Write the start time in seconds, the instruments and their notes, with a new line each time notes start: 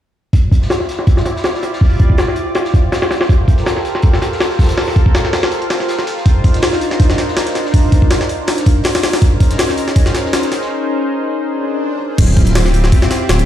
0.33 analog synth pad E4 F4 G4 C5 D5, kick, closed hi-hat, open hi-hat
0.52 kick, closed hi-hat, open hi-hat
0.62 snare, closed hi-hat
0.70 snare, closed hi-hat, open hi-hat
0.80 snare
0.89 snare, closed hi-hat, open hi-hat
0.99 snare
1.07 kick, closed hi-hat, open hi-hat
1.17 snare
1.25 snare, closed hi-hat, open hi-hat
1.36 snare
1.44 snare, closed hi-hat, open hi-hat
1.54 snare, closed hi-hat
1.63 snare, closed hi-hat, open hi-hat
1.73 snare
1.81 kick, open hi-hat
2.00 kick, closed hi-hat, open hi-hat
2.10 kick
2.18 snare, closed hi-hat, open hi-hat
2.28 snare
2.36 closed hi-hat, open hi-hat
2.55 snare, closed hi-hat, open hi-hat
2.65 snare, closed hi-hat
2.74 kick, closed hi-hat, open hi-hat
2.92 snare, closed hi-hat, open hi-hat
3.02 snare, closed hi-hat, open hi-hat
3.11 snare, closed hi-hat, open hi-hat
3.21 snare, open hi-hat
3.29 analog synth pad F4 A4 A#4, kick, closed hi-hat, open hi-hat
3.48 kick, closed hi-hat, open hi-hat
3.57 snare, closed hi-hat
3.66 snare, closed hi-hat, open hi-hat
3.77 snare
3.85 snare, closed hi-hat, open hi-hat
3.95 snare
4.02 kick, closed hi-hat, open hi-hat
4.13 snare
4.22 snare, closed hi-hat, open hi-hat
4.32 snare
4.40 snare, closed hi-hat, open hi-hat
4.50 snare, closed hi-hat
4.59 kick, snare, closed hi-hat, open hi-hat
4.64 snare, closed hi-hat
4.69 snare, closed hi-hat
4.78 snare, open hi-hat
4.88 snare
4.96 kick, closed hi-hat, open hi-hat
5.06 kick
5.15 snare, closed hi-hat, open hi-hat
5.25 snare
5.33 snare, closed hi-hat, open hi-hat
5.43 snare, open hi-hat
5.52 snare, closed hi-hat, open hi-hat
5.62 closed hi-hat
5.70 snare, closed hi-hat, open hi-hat
5.80 snare
5.89 snare, closed hi-hat, open hi-hat
5.99 snare, closed hi-hat
6.07 snare, closed hi-hat, open hi-hat
6.18 snare
6.26 analog synth pad D4 D#4 A#4, kick, closed hi-hat, open hi-hat
6.44 kick, closed hi-hat, open hi-hat
6.54 snare, closed hi-hat
6.62 snare, closed hi-hat, open hi-hat
6.73 snare
6.81 snare, closed hi-hat, open hi-hat
6.91 snare
7.00 kick, closed hi-hat, open hi-hat
7.10 snare
7.18 snare, closed hi-hat, open hi-hat
7.28 snare
7.37 snare, closed hi-hat, open hi-hat
7.47 snare, closed hi-hat
7.55 snare, closed hi-hat, open hi-hat
7.65 snare
7.74 kick, open hi-hat
7.92 kick, closed hi-hat, open hi-hat
8.02 kick
8.10 snare, closed hi-hat, open hi-hat
8.21 snare
8.29 closed hi-hat, open hi-hat
8.47 snare, closed hi-hat, open hi-hat
8.58 snare, closed hi-hat
8.66 kick, closed hi-hat, open hi-hat
8.84 snare, closed hi-hat, open hi-hat
8.95 snare, closed hi-hat, open hi-hat
9.03 snare, closed hi-hat, open hi-hat
9.13 snare, open hi-hat
9.22 analog synth pad C#4 D#4 G#4 A#4 C5, kick, closed hi-hat, open hi-hat
9.40 kick, closed hi-hat, open hi-hat
9.50 snare, closed hi-hat
9.58 snare, closed hi-hat, open hi-hat
9.69 snare
9.77 snare, closed hi-hat, open hi-hat
9.88 snare
9.96 kick, closed hi-hat, open hi-hat
10.06 snare
10.14 snare, closed hi-hat, open hi-hat
10.26 snare
10.33 snare, closed hi-hat, open hi-hat
10.43 snare, closed hi-hat
10.52 snare, closed hi-hat, open hi-hat
10.61 snare
11.44 swell
12.18 detuned saw bass D1, analog synth pad C4 E4 F4 G4, kick, open hi-hat, crash
12.37 kick, open hi-hat
12.47 closed hi-hat
12.55 snare, open hi-hat
12.66 snare
12.74 open hi-hat
12.84 snare
12.92 kick, open hi-hat
13.02 snare
13.11 snare, open hi-hat
13.29 detuned saw bass D1, snare, open hi-hat
13.39 closed hi-hat